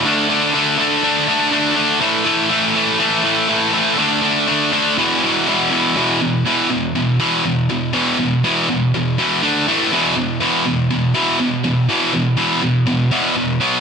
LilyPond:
\new Staff \with { instrumentName = "Distorted electric guitar" } { \clef bass \time 4/4 \key d \lydian \tempo 4 = 122 <d a d'>8 <d a d'>8 <d a d'>8 <d a d'>8 <d a d'>8 <d a d'>8 <d a d'>8 <d a d'>8 | <a, e a>8 <a, e a>8 <a, e a>8 <a, e a>8 <a, e a>8 <a, e a>8 <a, e a>8 <a, e a>8 | <d a d'>8 <d a d'>8 <d a d'>8 <d a d'>8 <e, b, e>8 <e, b, e>8 <e, b, e>8 <e, b, e>8 | <e, b, e>8 <e, b,>8 <e, b, e>8 <e, b,>8 <e, b,>8 <e, b, e>8 <e, b,>8 <e, b,>8 |
<e, b, e>8 <e, b,>8 <e, b, e>8 <e, b,>8 <e, b,>8 <e, b, e>8 <d a d'>8 <a, e a>8 | <e, b, e>8 <e, b,>8 <e, b, e>8 <e, b,>8 <e, b,>8 <e, b, e>8 <e, b,>8 <e, b,>8 | <e, b, e>8 <e, b,>8 <e, b, e>8 <e, b,>8 <e, b,>8 <e, b, e>8 <e, b,>8 <b, fis b>8 | }